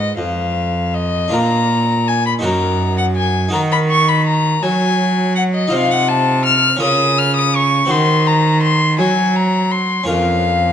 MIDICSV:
0, 0, Header, 1, 4, 480
1, 0, Start_track
1, 0, Key_signature, -6, "minor"
1, 0, Tempo, 754717
1, 848, Time_signature, 6, 3, 24, 8
1, 1320, Tempo, 728155
1, 3729, Key_signature, -5, "minor"
1, 7022, End_track
2, 0, Start_track
2, 0, Title_t, "Violin"
2, 0, Program_c, 0, 40
2, 0, Note_on_c, 0, 75, 62
2, 110, Note_off_c, 0, 75, 0
2, 114, Note_on_c, 0, 77, 60
2, 596, Note_on_c, 0, 75, 71
2, 606, Note_off_c, 0, 77, 0
2, 849, Note_on_c, 0, 82, 82
2, 859, Note_off_c, 0, 75, 0
2, 1320, Note_on_c, 0, 80, 79
2, 1330, Note_off_c, 0, 82, 0
2, 1441, Note_off_c, 0, 80, 0
2, 1444, Note_on_c, 0, 83, 71
2, 1492, Note_off_c, 0, 83, 0
2, 1558, Note_on_c, 0, 82, 72
2, 1911, Note_off_c, 0, 82, 0
2, 1915, Note_on_c, 0, 78, 73
2, 1964, Note_off_c, 0, 78, 0
2, 2033, Note_on_c, 0, 80, 74
2, 2273, Note_off_c, 0, 80, 0
2, 2282, Note_on_c, 0, 82, 89
2, 2330, Note_off_c, 0, 82, 0
2, 2403, Note_on_c, 0, 83, 75
2, 2451, Note_off_c, 0, 83, 0
2, 2523, Note_on_c, 0, 85, 88
2, 2646, Note_on_c, 0, 83, 78
2, 2656, Note_off_c, 0, 85, 0
2, 2759, Note_off_c, 0, 83, 0
2, 2763, Note_on_c, 0, 82, 84
2, 3000, Note_on_c, 0, 80, 87
2, 3010, Note_off_c, 0, 82, 0
2, 3478, Note_off_c, 0, 80, 0
2, 3482, Note_on_c, 0, 78, 81
2, 3532, Note_off_c, 0, 78, 0
2, 3608, Note_on_c, 0, 75, 75
2, 3724, Note_on_c, 0, 77, 91
2, 3733, Note_off_c, 0, 75, 0
2, 3847, Note_on_c, 0, 78, 84
2, 3857, Note_off_c, 0, 77, 0
2, 3964, Note_on_c, 0, 81, 81
2, 3974, Note_off_c, 0, 78, 0
2, 4201, Note_off_c, 0, 81, 0
2, 4205, Note_on_c, 0, 89, 89
2, 4441, Note_off_c, 0, 89, 0
2, 4450, Note_on_c, 0, 87, 83
2, 4687, Note_on_c, 0, 89, 86
2, 4697, Note_off_c, 0, 87, 0
2, 4801, Note_off_c, 0, 89, 0
2, 4805, Note_on_c, 0, 87, 84
2, 4930, Note_on_c, 0, 85, 84
2, 4940, Note_off_c, 0, 87, 0
2, 5166, Note_on_c, 0, 84, 85
2, 5176, Note_off_c, 0, 85, 0
2, 5403, Note_on_c, 0, 82, 82
2, 5413, Note_off_c, 0, 84, 0
2, 5635, Note_off_c, 0, 82, 0
2, 5639, Note_on_c, 0, 84, 83
2, 5872, Note_off_c, 0, 84, 0
2, 5882, Note_on_c, 0, 80, 77
2, 6121, Note_on_c, 0, 82, 74
2, 6131, Note_off_c, 0, 80, 0
2, 6357, Note_on_c, 0, 84, 79
2, 6367, Note_off_c, 0, 82, 0
2, 6594, Note_off_c, 0, 84, 0
2, 6598, Note_on_c, 0, 77, 82
2, 7022, Note_off_c, 0, 77, 0
2, 7022, End_track
3, 0, Start_track
3, 0, Title_t, "Harpsichord"
3, 0, Program_c, 1, 6
3, 0, Note_on_c, 1, 44, 39
3, 0, Note_on_c, 1, 65, 38
3, 0, Note_on_c, 1, 71, 35
3, 92, Note_off_c, 1, 44, 0
3, 111, Note_on_c, 1, 41, 42
3, 807, Note_off_c, 1, 65, 0
3, 811, Note_off_c, 1, 71, 0
3, 815, Note_on_c, 1, 62, 40
3, 818, Note_off_c, 1, 41, 0
3, 825, Note_on_c, 1, 65, 38
3, 835, Note_on_c, 1, 70, 39
3, 843, Note_on_c, 1, 46, 44
3, 1521, Note_off_c, 1, 62, 0
3, 1526, Note_on_c, 1, 63, 44
3, 1527, Note_off_c, 1, 65, 0
3, 1532, Note_off_c, 1, 46, 0
3, 1532, Note_off_c, 1, 70, 0
3, 1537, Note_on_c, 1, 66, 46
3, 1548, Note_on_c, 1, 70, 43
3, 1557, Note_on_c, 1, 42, 51
3, 2242, Note_off_c, 1, 63, 0
3, 2248, Note_off_c, 1, 66, 0
3, 2249, Note_on_c, 1, 63, 42
3, 2253, Note_off_c, 1, 42, 0
3, 2253, Note_off_c, 1, 70, 0
3, 2259, Note_on_c, 1, 66, 44
3, 2271, Note_on_c, 1, 70, 48
3, 2279, Note_on_c, 1, 51, 53
3, 2977, Note_off_c, 1, 51, 0
3, 3003, Note_on_c, 1, 54, 55
3, 3684, Note_off_c, 1, 63, 0
3, 3692, Note_off_c, 1, 66, 0
3, 3692, Note_on_c, 1, 63, 47
3, 3698, Note_off_c, 1, 70, 0
3, 3701, Note_on_c, 1, 65, 45
3, 3702, Note_off_c, 1, 54, 0
3, 3713, Note_on_c, 1, 72, 46
3, 3723, Note_on_c, 1, 48, 55
3, 4407, Note_off_c, 1, 63, 0
3, 4411, Note_off_c, 1, 65, 0
3, 4411, Note_on_c, 1, 61, 50
3, 4417, Note_off_c, 1, 72, 0
3, 4418, Note_off_c, 1, 48, 0
3, 4423, Note_on_c, 1, 65, 45
3, 4432, Note_on_c, 1, 70, 48
3, 4443, Note_on_c, 1, 49, 58
3, 5124, Note_off_c, 1, 61, 0
3, 5128, Note_on_c, 1, 60, 47
3, 5130, Note_off_c, 1, 65, 0
3, 5135, Note_off_c, 1, 70, 0
3, 5136, Note_off_c, 1, 49, 0
3, 5140, Note_on_c, 1, 66, 44
3, 5149, Note_on_c, 1, 72, 44
3, 5159, Note_on_c, 1, 51, 50
3, 5847, Note_off_c, 1, 51, 0
3, 5875, Note_on_c, 1, 54, 55
3, 6553, Note_off_c, 1, 60, 0
3, 6558, Note_off_c, 1, 66, 0
3, 6563, Note_off_c, 1, 72, 0
3, 6567, Note_on_c, 1, 61, 45
3, 6570, Note_off_c, 1, 54, 0
3, 6577, Note_on_c, 1, 65, 45
3, 6585, Note_on_c, 1, 70, 42
3, 6597, Note_on_c, 1, 41, 46
3, 7022, Note_off_c, 1, 41, 0
3, 7022, Note_off_c, 1, 61, 0
3, 7022, Note_off_c, 1, 65, 0
3, 7022, Note_off_c, 1, 70, 0
3, 7022, End_track
4, 0, Start_track
4, 0, Title_t, "Cello"
4, 0, Program_c, 2, 42
4, 0, Note_on_c, 2, 44, 59
4, 119, Note_off_c, 2, 44, 0
4, 122, Note_on_c, 2, 41, 62
4, 835, Note_off_c, 2, 41, 0
4, 849, Note_on_c, 2, 46, 61
4, 1547, Note_off_c, 2, 46, 0
4, 1563, Note_on_c, 2, 42, 69
4, 2268, Note_off_c, 2, 42, 0
4, 2283, Note_on_c, 2, 51, 71
4, 2991, Note_off_c, 2, 51, 0
4, 3005, Note_on_c, 2, 54, 69
4, 3715, Note_off_c, 2, 54, 0
4, 3732, Note_on_c, 2, 48, 70
4, 4422, Note_off_c, 2, 48, 0
4, 4446, Note_on_c, 2, 49, 73
4, 5150, Note_off_c, 2, 49, 0
4, 5164, Note_on_c, 2, 51, 76
4, 5873, Note_on_c, 2, 54, 69
4, 5883, Note_off_c, 2, 51, 0
4, 6593, Note_off_c, 2, 54, 0
4, 6597, Note_on_c, 2, 41, 72
4, 7022, Note_off_c, 2, 41, 0
4, 7022, End_track
0, 0, End_of_file